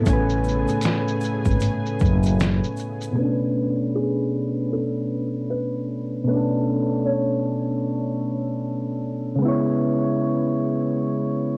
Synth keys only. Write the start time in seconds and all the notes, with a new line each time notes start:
0.00 A2 A3
0.07 C#4 G#5
0.13 B4
3.12 B2 A3
3.19 C#4 D4
3.25 A4
3.32 B4
6.24 B2 A3
6.30 C#4 D4
6.37 A4
9.36 C#3 G#3
9.42 B3 E4
9.48 C#5